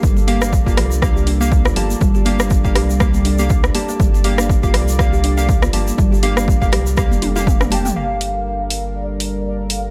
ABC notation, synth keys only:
X:1
M:4/4
L:1/16
Q:"Swing 16ths" 1/4=121
K:Gm
V:1 name="Synth keys"
[B,Gf]2 [B,Gf]3 [B,Gf]3 [B,Gf]3 [B,Gf]2 z [B,Ga]2- | [B,Ga]2 [B,Gf]3 [B,Gf]3 [B,Gf]3 [B,Gf]2 z [B,Ga]2- | [B,Ga]2 [B,Gf]3 [B,Gf]3 [B,Gf]3 [B,Gf]2 z [B,Ga]2- | [B,Ga]2 [B,Gf]3 [B,Gf]3 [B,Gf]3 [B,Gf]2 z [B,Ga]2 |
[B,Gf]16 |]